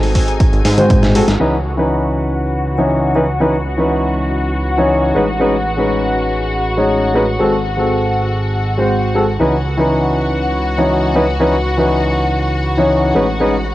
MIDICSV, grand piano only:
0, 0, Header, 1, 2, 480
1, 0, Start_track
1, 0, Key_signature, 4, "minor"
1, 0, Tempo, 500000
1, 1347, Time_signature, 4, 2, 24, 8
1, 13196, End_track
2, 0, Start_track
2, 0, Title_t, "Grand piano"
2, 0, Program_c, 0, 0
2, 0, Note_on_c, 0, 56, 76
2, 0, Note_on_c, 0, 60, 65
2, 0, Note_on_c, 0, 66, 69
2, 0, Note_on_c, 0, 69, 79
2, 714, Note_off_c, 0, 56, 0
2, 718, Note_off_c, 0, 60, 0
2, 721, Note_off_c, 0, 66, 0
2, 724, Note_off_c, 0, 69, 0
2, 743, Note_on_c, 0, 56, 74
2, 747, Note_on_c, 0, 60, 72
2, 749, Note_on_c, 0, 66, 71
2, 754, Note_on_c, 0, 72, 84
2, 1075, Note_off_c, 0, 56, 0
2, 1077, Note_off_c, 0, 60, 0
2, 1078, Note_off_c, 0, 66, 0
2, 1080, Note_off_c, 0, 72, 0
2, 1102, Note_on_c, 0, 56, 86
2, 1105, Note_on_c, 0, 60, 79
2, 1107, Note_on_c, 0, 66, 77
2, 1110, Note_on_c, 0, 69, 92
2, 1181, Note_off_c, 0, 56, 0
2, 1183, Note_off_c, 0, 60, 0
2, 1184, Note_off_c, 0, 66, 0
2, 1186, Note_off_c, 0, 69, 0
2, 1340, Note_on_c, 0, 52, 70
2, 1341, Note_on_c, 0, 61, 66
2, 1346, Note_on_c, 0, 63, 66
2, 1349, Note_on_c, 0, 71, 82
2, 1467, Note_off_c, 0, 52, 0
2, 1467, Note_off_c, 0, 61, 0
2, 1470, Note_off_c, 0, 63, 0
2, 1471, Note_off_c, 0, 71, 0
2, 1700, Note_on_c, 0, 52, 63
2, 1707, Note_on_c, 0, 61, 58
2, 1712, Note_on_c, 0, 63, 58
2, 1718, Note_on_c, 0, 71, 70
2, 2635, Note_off_c, 0, 52, 0
2, 2639, Note_off_c, 0, 61, 0
2, 2641, Note_off_c, 0, 63, 0
2, 2645, Note_off_c, 0, 71, 0
2, 2668, Note_on_c, 0, 52, 65
2, 2671, Note_on_c, 0, 61, 63
2, 2675, Note_on_c, 0, 63, 60
2, 2678, Note_on_c, 0, 73, 72
2, 2998, Note_off_c, 0, 52, 0
2, 2999, Note_off_c, 0, 61, 0
2, 3001, Note_off_c, 0, 63, 0
2, 3003, Note_off_c, 0, 73, 0
2, 3022, Note_on_c, 0, 52, 72
2, 3026, Note_on_c, 0, 61, 68
2, 3029, Note_on_c, 0, 63, 66
2, 3033, Note_on_c, 0, 71, 79
2, 3102, Note_off_c, 0, 52, 0
2, 3104, Note_off_c, 0, 61, 0
2, 3105, Note_off_c, 0, 63, 0
2, 3107, Note_off_c, 0, 71, 0
2, 3264, Note_on_c, 0, 52, 74
2, 3267, Note_on_c, 0, 61, 65
2, 3270, Note_on_c, 0, 63, 66
2, 3274, Note_on_c, 0, 71, 81
2, 3389, Note_off_c, 0, 52, 0
2, 3390, Note_off_c, 0, 61, 0
2, 3392, Note_off_c, 0, 63, 0
2, 3394, Note_off_c, 0, 71, 0
2, 3621, Note_on_c, 0, 52, 62
2, 3628, Note_on_c, 0, 61, 58
2, 3635, Note_on_c, 0, 63, 57
2, 3641, Note_on_c, 0, 71, 71
2, 4556, Note_off_c, 0, 52, 0
2, 4560, Note_off_c, 0, 61, 0
2, 4563, Note_off_c, 0, 63, 0
2, 4566, Note_off_c, 0, 71, 0
2, 4585, Note_on_c, 0, 52, 70
2, 4589, Note_on_c, 0, 61, 62
2, 4592, Note_on_c, 0, 63, 62
2, 4595, Note_on_c, 0, 73, 77
2, 4916, Note_off_c, 0, 52, 0
2, 4918, Note_off_c, 0, 61, 0
2, 4919, Note_off_c, 0, 63, 0
2, 4921, Note_off_c, 0, 73, 0
2, 4942, Note_on_c, 0, 56, 74
2, 4947, Note_on_c, 0, 61, 67
2, 4950, Note_on_c, 0, 63, 68
2, 4952, Note_on_c, 0, 71, 79
2, 5022, Note_off_c, 0, 56, 0
2, 5024, Note_off_c, 0, 61, 0
2, 5025, Note_off_c, 0, 63, 0
2, 5027, Note_off_c, 0, 71, 0
2, 5180, Note_on_c, 0, 56, 78
2, 5184, Note_on_c, 0, 61, 66
2, 5188, Note_on_c, 0, 63, 68
2, 5190, Note_on_c, 0, 71, 82
2, 5307, Note_off_c, 0, 56, 0
2, 5309, Note_off_c, 0, 61, 0
2, 5311, Note_off_c, 0, 63, 0
2, 5312, Note_off_c, 0, 71, 0
2, 5538, Note_on_c, 0, 56, 65
2, 5546, Note_on_c, 0, 61, 59
2, 5550, Note_on_c, 0, 63, 59
2, 5558, Note_on_c, 0, 71, 72
2, 6475, Note_off_c, 0, 56, 0
2, 6478, Note_off_c, 0, 61, 0
2, 6481, Note_off_c, 0, 63, 0
2, 6485, Note_off_c, 0, 71, 0
2, 6502, Note_on_c, 0, 56, 71
2, 6507, Note_on_c, 0, 61, 60
2, 6509, Note_on_c, 0, 63, 62
2, 6513, Note_on_c, 0, 73, 74
2, 6835, Note_off_c, 0, 56, 0
2, 6837, Note_off_c, 0, 61, 0
2, 6838, Note_off_c, 0, 63, 0
2, 6840, Note_off_c, 0, 73, 0
2, 6860, Note_on_c, 0, 56, 75
2, 6863, Note_on_c, 0, 61, 70
2, 6866, Note_on_c, 0, 63, 70
2, 6869, Note_on_c, 0, 71, 83
2, 6940, Note_off_c, 0, 56, 0
2, 6942, Note_off_c, 0, 61, 0
2, 6943, Note_off_c, 0, 63, 0
2, 6945, Note_off_c, 0, 71, 0
2, 7100, Note_on_c, 0, 56, 75
2, 7103, Note_on_c, 0, 60, 71
2, 7106, Note_on_c, 0, 66, 67
2, 7109, Note_on_c, 0, 69, 82
2, 7227, Note_off_c, 0, 56, 0
2, 7228, Note_off_c, 0, 60, 0
2, 7229, Note_off_c, 0, 66, 0
2, 7231, Note_off_c, 0, 69, 0
2, 7461, Note_on_c, 0, 56, 63
2, 7467, Note_on_c, 0, 60, 58
2, 7474, Note_on_c, 0, 66, 59
2, 7481, Note_on_c, 0, 69, 71
2, 8396, Note_off_c, 0, 56, 0
2, 8399, Note_off_c, 0, 60, 0
2, 8402, Note_off_c, 0, 66, 0
2, 8406, Note_off_c, 0, 69, 0
2, 8425, Note_on_c, 0, 56, 65
2, 8428, Note_on_c, 0, 60, 63
2, 8431, Note_on_c, 0, 66, 59
2, 8434, Note_on_c, 0, 72, 72
2, 8756, Note_off_c, 0, 56, 0
2, 8757, Note_off_c, 0, 60, 0
2, 8759, Note_off_c, 0, 66, 0
2, 8761, Note_off_c, 0, 72, 0
2, 8781, Note_on_c, 0, 56, 74
2, 8785, Note_on_c, 0, 60, 65
2, 8787, Note_on_c, 0, 66, 66
2, 8790, Note_on_c, 0, 69, 82
2, 8861, Note_off_c, 0, 56, 0
2, 8863, Note_off_c, 0, 60, 0
2, 8864, Note_off_c, 0, 66, 0
2, 8866, Note_off_c, 0, 69, 0
2, 9019, Note_on_c, 0, 52, 72
2, 9023, Note_on_c, 0, 61, 68
2, 9026, Note_on_c, 0, 63, 69
2, 9029, Note_on_c, 0, 71, 80
2, 9146, Note_off_c, 0, 52, 0
2, 9148, Note_off_c, 0, 61, 0
2, 9150, Note_off_c, 0, 63, 0
2, 9151, Note_off_c, 0, 71, 0
2, 9381, Note_on_c, 0, 52, 67
2, 9387, Note_on_c, 0, 61, 60
2, 9394, Note_on_c, 0, 63, 59
2, 9400, Note_on_c, 0, 71, 68
2, 10316, Note_off_c, 0, 52, 0
2, 10319, Note_off_c, 0, 61, 0
2, 10322, Note_off_c, 0, 63, 0
2, 10326, Note_off_c, 0, 71, 0
2, 10346, Note_on_c, 0, 52, 69
2, 10349, Note_on_c, 0, 61, 65
2, 10352, Note_on_c, 0, 63, 62
2, 10356, Note_on_c, 0, 73, 77
2, 10677, Note_off_c, 0, 52, 0
2, 10678, Note_off_c, 0, 61, 0
2, 10680, Note_off_c, 0, 63, 0
2, 10681, Note_off_c, 0, 73, 0
2, 10701, Note_on_c, 0, 52, 74
2, 10704, Note_on_c, 0, 61, 71
2, 10707, Note_on_c, 0, 63, 69
2, 10711, Note_on_c, 0, 71, 82
2, 10781, Note_off_c, 0, 52, 0
2, 10782, Note_off_c, 0, 61, 0
2, 10784, Note_off_c, 0, 63, 0
2, 10786, Note_off_c, 0, 71, 0
2, 10942, Note_on_c, 0, 52, 76
2, 10945, Note_on_c, 0, 61, 67
2, 10948, Note_on_c, 0, 63, 70
2, 10952, Note_on_c, 0, 71, 82
2, 11067, Note_off_c, 0, 52, 0
2, 11069, Note_off_c, 0, 61, 0
2, 11071, Note_off_c, 0, 63, 0
2, 11073, Note_off_c, 0, 71, 0
2, 11300, Note_on_c, 0, 52, 67
2, 11307, Note_on_c, 0, 61, 60
2, 11313, Note_on_c, 0, 63, 59
2, 11320, Note_on_c, 0, 71, 73
2, 12235, Note_off_c, 0, 52, 0
2, 12239, Note_off_c, 0, 61, 0
2, 12242, Note_off_c, 0, 63, 0
2, 12245, Note_off_c, 0, 71, 0
2, 12264, Note_on_c, 0, 52, 70
2, 12268, Note_on_c, 0, 61, 63
2, 12272, Note_on_c, 0, 63, 65
2, 12274, Note_on_c, 0, 73, 77
2, 12596, Note_off_c, 0, 52, 0
2, 12598, Note_off_c, 0, 61, 0
2, 12599, Note_off_c, 0, 63, 0
2, 12601, Note_off_c, 0, 73, 0
2, 12623, Note_on_c, 0, 56, 73
2, 12624, Note_on_c, 0, 61, 71
2, 12629, Note_on_c, 0, 63, 70
2, 12632, Note_on_c, 0, 71, 84
2, 12702, Note_off_c, 0, 56, 0
2, 12703, Note_off_c, 0, 61, 0
2, 12705, Note_off_c, 0, 63, 0
2, 12706, Note_off_c, 0, 71, 0
2, 12864, Note_on_c, 0, 56, 76
2, 12867, Note_on_c, 0, 61, 68
2, 12871, Note_on_c, 0, 63, 72
2, 12874, Note_on_c, 0, 71, 85
2, 12989, Note_off_c, 0, 56, 0
2, 12990, Note_off_c, 0, 61, 0
2, 12992, Note_off_c, 0, 63, 0
2, 12994, Note_off_c, 0, 71, 0
2, 13196, End_track
0, 0, End_of_file